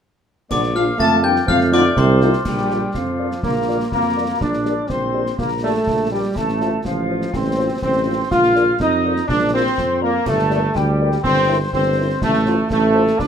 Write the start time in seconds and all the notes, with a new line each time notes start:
0.50 A#1 D3 F3 A#3 D5 D6, concert bass drum, snare, crash
0.63 snare
0.74 F3 A#3 D4 F4 F5 F6, snare
0.98 F2 A3 A5 A6, concert bass drum, snare
1.22 G3 A#3 D4 F4 G5 G6
1.36 snare
1.47 F2 D#3 F3 A3 F5 F6, concert bass drum, snare
1.60 snare
1.72 D3 A3 D#4 F4 D5 D6, snare
1.96 C2 C3 C5 C6, concert bass drum, snare
2.21 A3 D#4 F4, snare
2.33 snare
2.45 A#1 G3 G4 G5, concert bass drum, snare, crash
2.58 snare
2.70 F4 A#4 D5, snare
2.94 F2 F3 F4 F5, concert bass drum, snare
3.19 F4 A#4 D5
3.31 snare
3.43 A#1 A#3 A#4 A#5, concert bass drum, snare
3.68 F4 A#4 D5
3.92 F2 A#3 A#4 A#5, concert bass drum, snare
4.17 F4 A#4 D5
4.41 A#1 D4 D5 D6, concert bass drum, snare
4.53 snare
4.65 G4 A#4 D5, snare
4.89 A#1 C4 C5 C6, concert bass drum, snare
5.14 G4 A#4 D5
5.26 snare
5.38 A#1 A#3 A#4 A#5, concert bass drum, snare
5.63 A3 G4 A4 A#4 D5 A5
5.87 A#1, concert bass drum, snare
6.11 G3 G4 A#4 D5 G5
6.36 A1 A3 A4 A5, concert bass drum, snare, crash
6.49 snare
6.61 F4 C5, snare
6.85 A1 F3 F4 F5, concert bass drum, snare
7.10 F4 C5
7.22 snare
7.33 A1 C4 C5 C6, concert bass drum, snare
7.58 F4 C5
7.82 A1 C4 C5 C6, concert bass drum, snare
8.06 F4 C5
8.31 A#1 F4 F5 F6, concert bass drum, snare
8.43 snare
8.56 F4 A#4 D5, snare
8.80 F2 D#4 D#5 D#6, concert bass drum, snare
9.04 F4 A#4 D5
9.16 snare
9.28 A#1 D4 D5 D6, concert bass drum, snare
9.53 C4 F4 A#4 C5 D5 C6
9.78 F2, concert bass drum, snare
10.02 A#3 F4 A#4 D5 A#5
10.26 G1 A3 A4 A5, concert bass drum, snare, crash
10.39 snare
10.51 G4 A#4 D5, snare
10.75 D2 G3 G4 G5, concert bass drum, snare
11.00 G4 A#4 D5
11.12 snare
11.23 G1 C4 C5 C6, concert bass drum, snare
11.49 E4 A#4 C5
11.72 G1 C4 C5 C6, concert bass drum, snare
11.98 E4 A#4 C5
12.22 A1 A3 A4 A5, concert bass drum, snare
12.34 snare
12.46 F4 C5, snare
12.70 A1 A3 A4 A5, concert bass drum, snare
12.95 F4 C5
13.07 snare
13.19 A#1 D4 D5 D6, concert bass drum, snare